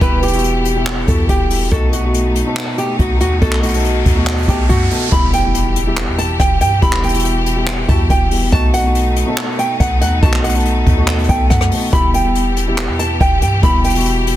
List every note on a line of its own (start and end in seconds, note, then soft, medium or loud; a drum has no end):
0.00 1.04 E1 loud
0.00 0.32 B2 loud
0.00 1.68 E3 medium
0.00 0.33 G3 medium
0.00 5.08 B3 medium
0.00 0.02 E4 medium
0.00 0.23 E4 medium
0.00 0.03 G4 loud
0.00 1.68 G4 medium
0.00 0.23 G4 loud
0.00 0.19 B4 loud
0.00 kick loud
0.00 closed hi-hat medium
0.23 1.04 G4 medium
0.23 closed hi-hat medium
0.28 closed hi-hat medium
0.32 0.61 B2 medium
0.32 0.62 G3 medium
0.32 0.62 E4 medium
0.32 0.63 F#4 medium
0.32 closed hi-hat medium
0.39 closed hi-hat medium
0.44 closed hi-hat medium
0.65 closed hi-hat medium
0.74 0.96 B2 medium
0.74 0.97 G3 medium
0.74 0.97 E4 medium
0.74 0.98 G4 loud
0.87 clap loud
1.06 1.28 E2 loud
1.06 1.35 B2 medium
1.06 1.36 G3 medium
1.06 1.36 E4 medium
1.06 1.37 F#4 medium
1.06 1.25 A4 medium
1.06 kick medium
1.06 closed hi-hat medium
1.29 1.70 E1 loud
1.29 1.69 G4 medium
1.29 kick medium
1.29 closed hi-hat medium
1.49 1.64 B2 medium
1.49 1.64 G3 medium
1.49 1.65 E4 medium
1.49 1.65 G4 medium
1.49 open hi-hat medium
1.70 2.43 B1 loud
1.70 1.92 B2 loud
1.70 1.93 A3 medium
1.70 5.08 A3 medium
1.70 5.08 D#4 medium
1.70 1.93 D#4 medium
1.70 1.94 F#4 loud
1.70 1.89 A4 medium
1.70 kick loud
1.70 closed hi-hat medium
1.70 riser medium
1.93 2.74 F#4 medium
1.93 closed hi-hat medium
2.02 2.31 B2 medium
2.02 2.32 A3 medium
2.02 2.32 D#4 medium
2.02 2.33 F#4 medium
2.14 closed hi-hat medium
2.35 closed hi-hat medium
2.44 3.02 B2 medium
2.44 3.03 A3 medium
2.44 3.03 D#4 medium
2.44 3.04 A4 medium
2.57 clap loud
2.78 2.96 G4 medium
2.78 closed hi-hat medium
2.99 3.22 B1 loud
2.99 3.17 F#4 medium
2.99 kick medium
2.99 closed hi-hat medium
3.20 3.41 D#2 loud
3.20 3.38 F#4 medium
3.20 closed hi-hat medium
3.40 4.03 B1 loud
3.40 3.62 B2 loud
3.40 3.63 A3 medium
3.40 3.63 D#4 medium
3.40 3.64 F#4 loud
3.40 3.59 A4 loud
3.40 kick loud
3.40 closed hi-hat medium
3.52 clap medium
3.63 4.44 F#4 medium
3.63 closed hi-hat medium
3.69 4.02 B2 medium
3.69 closed hi-hat medium
3.73 4.02 A3 medium
3.73 4.03 D#4 medium
3.73 4.03 A4 medium
3.73 closed hi-hat medium
3.79 closed hi-hat soft
3.84 closed hi-hat medium
4.06 4.46 D#2 loud
4.06 kick medium
4.06 closed hi-hat medium
4.15 4.37 B2 medium
4.15 4.37 A3 medium
4.15 4.38 D#4 medium
4.15 4.38 F#4 medium
4.27 clap loud
4.32 closed hi-hat soft
4.38 closed hi-hat soft
4.43 4.76 B2 medium
4.43 closed hi-hat medium
4.48 4.69 B1 loud
4.48 4.76 A3 medium
4.48 4.77 D#4 medium
4.48 4.66 G4 medium
4.48 4.77 A4 medium
4.48 kick medium
4.48 closed hi-hat medium
4.69 4.90 F#2 loud
4.69 5.09 F#4 medium
4.69 kick medium
4.69 closed hi-hat medium
4.89 5.04 B2 medium
4.89 5.05 A3 medium
4.89 5.05 D#4 medium
4.89 5.06 A4 medium
4.89 open hi-hat medium
5.11 6.09 E1 loud
5.11 5.33 B2 loud
5.11 8.49 E3 medium
5.11 5.33 G3 loud
5.11 14.36 B3 medium
5.11 5.34 E4 medium
5.11 8.49 G4 medium
5.11 5.34 G4 loud
5.11 5.30 B5 medium
5.11 kick loud
5.11 closed hi-hat medium
5.11 impact medium
5.33 6.14 G5 medium
5.33 closed hi-hat medium
5.42 5.72 B2 medium
5.42 5.72 G3 medium
5.42 5.73 E4 medium
5.42 5.73 G4 medium
5.55 closed hi-hat medium
5.76 closed hi-hat medium
5.85 6.43 B2 medium
5.85 6.43 G3 medium
5.85 6.44 E4 medium
5.85 6.44 G4 medium
5.97 clap loud
6.08 6.38 E2 loud
6.18 6.36 A5 medium
6.18 closed hi-hat medium
6.40 6.62 E1 loud
6.40 6.57 G5 medium
6.40 kick medium
6.40 cross-stick medium
6.40 closed hi-hat medium
6.61 6.81 G2 loud
6.61 6.78 G5 medium
6.61 closed hi-hat medium
6.81 7.85 E1 loud
6.81 7.03 B2 loud
6.81 7.03 G3 medium
6.81 7.04 E4 medium
6.81 7.04 G4 loud
6.81 7.00 B5 loud
6.81 kick loud
6.81 closed hi-hat medium
6.93 clap medium
7.03 7.85 G5 medium
7.03 closed hi-hat medium
7.09 closed hi-hat medium
7.13 7.42 B2 medium
7.13 7.42 G3 medium
7.13 7.43 E4 medium
7.13 7.43 F#4 medium
7.13 closed hi-hat medium
7.19 closed hi-hat medium
7.25 closed hi-hat medium
7.46 closed hi-hat medium
7.55 7.77 B2 medium
7.55 7.78 G3 medium
7.55 7.78 E4 medium
7.55 7.79 G4 loud
7.67 clap loud
7.87 8.09 E2 loud
7.87 8.16 B2 medium
7.87 8.17 G3 medium
7.87 8.17 E4 medium
7.87 8.18 F#4 medium
7.87 8.06 A5 medium
7.87 kick medium
7.87 closed hi-hat medium
8.10 8.51 E1 loud
8.10 8.50 G5 medium
8.10 kick medium
8.10 closed hi-hat medium
8.30 8.45 B2 medium
8.30 8.45 G3 medium
8.30 8.46 E4 medium
8.30 8.46 G4 medium
8.30 open hi-hat medium
8.51 9.24 B1 loud
8.51 8.73 B2 loud
8.51 8.74 A3 medium
8.51 11.89 A3 medium
8.51 11.89 D#4 medium
8.51 8.74 D#4 loud
8.51 8.74 F#4 loud
8.51 8.70 A5 medium
8.51 kick loud
8.51 closed hi-hat medium
8.74 9.55 F#5 medium
8.74 closed hi-hat medium
8.83 9.12 B2 medium
8.83 9.13 A3 medium
8.83 9.13 D#4 medium
8.83 9.13 F#4 medium
8.95 closed hi-hat medium
9.16 closed hi-hat medium
9.25 9.83 B2 medium
9.25 9.84 A3 medium
9.25 9.84 D#4 medium
9.25 9.84 A4 medium
9.38 clap loud
9.59 9.76 G5 medium
9.59 closed hi-hat medium
9.80 10.03 B1 loud
9.80 9.98 F#5 medium
9.80 kick medium
9.80 closed hi-hat medium
10.01 10.22 D#2 loud
10.01 10.19 F#5 medium
10.01 closed hi-hat medium
10.21 10.84 B1 loud
10.21 10.43 B2 loud
10.21 10.44 A3 medium
10.21 10.44 D#4 medium
10.21 10.45 F#4 loud
10.21 10.40 A5 loud
10.21 kick loud
10.21 closed hi-hat medium
10.33 clap medium
10.44 11.25 F#5 medium
10.44 closed hi-hat medium
10.49 10.82 B2 medium
10.49 closed hi-hat medium
10.54 10.83 A3 medium
10.54 10.83 D#4 medium
10.54 10.84 A4 medium
10.54 closed hi-hat medium
10.60 closed hi-hat soft
10.65 closed hi-hat medium
10.87 11.27 D#2 loud
10.87 kick medium
10.87 closed hi-hat medium
10.96 11.18 B2 medium
10.96 11.18 A3 medium
10.96 11.19 D#4 medium
10.96 11.19 F#4 loud
11.08 clap loud
11.08 closed hi-hat soft
11.13 closed hi-hat soft
11.18 closed hi-hat soft
11.24 11.57 B2 medium
11.24 closed hi-hat medium
11.29 11.49 B1 loud
11.29 11.57 A3 medium
11.29 11.58 D#4 medium
11.29 11.58 A4 medium
11.29 11.47 G5 medium
11.29 kick medium
11.29 closed hi-hat medium
11.50 11.71 F#2 loud
11.50 11.90 F#5 medium
11.50 kick medium
11.50 cross-stick medium
11.50 closed hi-hat medium
11.61 cross-stick loud
11.70 11.85 B2 medium
11.70 11.86 A3 medium
11.70 11.86 D#4 medium
11.70 11.87 A4 medium
11.70 open hi-hat medium
11.91 12.90 E1 loud
11.91 12.13 B2 loud
11.91 14.36 E3 medium
11.91 12.14 G3 medium
11.91 12.14 E4 loud
11.91 14.36 G4 medium
11.91 12.15 G4 loud
11.91 12.10 B5 medium
11.91 kick loud
11.91 closed hi-hat medium
12.14 12.95 G5 medium
12.14 closed hi-hat medium
12.23 12.52 B2 medium
12.23 12.53 G3 medium
12.23 12.53 E4 medium
12.23 12.54 G4 medium
12.35 closed hi-hat medium
12.57 closed hi-hat medium
12.66 13.24 B2 medium
12.66 13.24 G3 medium
12.66 13.24 E4 medium
12.66 13.25 G4 medium
12.78 clap loud
12.89 13.19 E2 loud
12.99 13.17 A5 medium
12.99 closed hi-hat medium
13.20 13.43 E1 loud
13.20 13.38 G5 medium
13.20 kick medium
13.20 closed hi-hat medium
13.42 13.62 G2 loud
13.42 13.59 G5 medium
13.42 closed hi-hat medium
13.61 14.36 E1 loud
13.61 13.84 B2 loud
13.61 13.84 G3 medium
13.61 13.85 E4 medium
13.61 13.85 G4 loud
13.61 13.81 B5 loud
13.61 kick loud
13.61 closed hi-hat medium
13.84 14.36 G5 medium
13.84 closed hi-hat medium
13.90 closed hi-hat medium
13.94 14.23 B2 medium
13.94 14.23 G3 medium
13.94 14.24 E4 medium
13.94 14.24 F#4 medium
13.94 closed hi-hat medium
14.00 closed hi-hat medium
14.06 closed hi-hat medium
14.27 closed hi-hat medium